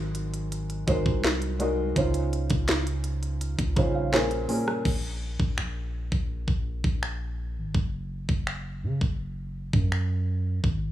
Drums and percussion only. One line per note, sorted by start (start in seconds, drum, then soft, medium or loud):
0.15 closed hi-hat medium
0.34 closed hi-hat medium
0.52 closed hi-hat medium
0.70 closed hi-hat medium
0.88 kick medium
0.88 closed hi-hat medium
1.06 kick loud
1.24 snare loud
1.42 closed hi-hat soft
1.60 closed hi-hat medium
1.96 kick loud
1.96 closed hi-hat medium
2.14 closed hi-hat medium
2.33 closed hi-hat medium
2.50 kick loud
2.50 closed hi-hat medium
2.68 snare loud
2.68 closed hi-hat medium
2.87 closed hi-hat medium
3.04 closed hi-hat medium
3.23 closed hi-hat medium
3.41 closed hi-hat medium
3.59 kick medium
3.59 closed hi-hat soft
3.76 kick medium
3.76 closed hi-hat medium
4.14 snare loud
4.31 closed hi-hat soft
4.49 open hi-hat medium
4.68 cross-stick medium
4.85 kick loud
4.85 crash medium
5.40 kick medium
5.58 finger snap loud
6.12 kick medium
6.48 kick medium
6.84 kick medium
7.03 finger snap loud
7.74 kick medium
8.29 kick medium
8.47 finger snap loud
9.01 kick medium
9.73 kick medium
9.92 finger snap loud
10.64 kick loud